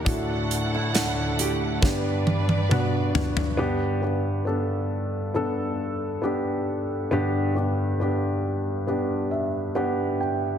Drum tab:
HH |x-x-x-x---------|----------------|----------------|
SD |----o---o-------|----------------|----------------|
T1 |----------oo----|----------------|----------------|
T2 |------------o---|----------------|----------------|
FT |--------------oo|----------------|----------------|
BD |o-------o-------|----------------|----------------|